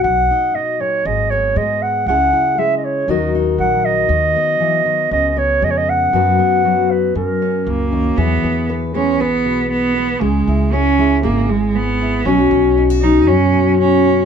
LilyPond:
<<
  \new Staff \with { instrumentName = "Clarinet" } { \time 4/4 \key b \major \tempo 4 = 118 fis''4 dis''8 cis''8 dis''8 cis''8 dis''8 fis''8 | fis''4 e''16. dis''32 cis''8 dis''8 r8 fis''8 dis''8~ | dis''2 dis''16. dis''32 cis''8 dis''32 cis''32 dis''16 fis''8~ | fis''4. b'8 ais'4. r8 |
r1 | r1 | r1 | }
  \new Staff \with { instrumentName = "Cello" } { \time 4/4 \key b \major r1 | r1 | r1 | r2. ais4 |
b4 r8 cis'8 b4 b4 | gis4 cis'4 ais8 gis8 b4 | cis'4 r8 dis'8 cis'4 cis'4 | }
  \new Staff \with { instrumentName = "Steel-string acoustic guitar" } { \time 4/4 \key b \major << { r8 dis'4. r8 b4. | <gis e' gis'>8 e'4. <fis dis' fis' ais'>8 dis'4. | r8 b2 b4. | <fis b fis' b'>8 b4. r8 cis'4. |
gis'8 b8 b'8 b8 b'4. b8 | gis'8 e'8 gis'8 e'8 gis'4. e'8 | <fis cis' fis'>8 cis'8 dis'16 fis'16 cis'8 fis'4. cis'8 | } \\ { <b, fis>4 b,8 ais,8 gis,4 gis4 | cis4 gis4 dis4 fis4 | dis4 e8 dis8 cis4 gis4 | fis,4 fis4 fis,4 cis8 dis8 |
e4. gis4 b,4. | cis4. gis4 gis,4. | b,4. fis4 fis,4. | } >> }
  \new Staff \with { instrumentName = "Upright bass" } { \clef bass \time 4/4 \key b \major b,,8 r4. gis,,4 gis,4 | cis,8 r4. dis,4 ais,,4 | dis,8 r4. cis,4 eis,4 | fis,8 r4. fis,4 cis,4 |
e,8 e,4. b,,2 | cis,8 cis,4. gis,,2 | b,,8 b,,4. fis,2 | }
>>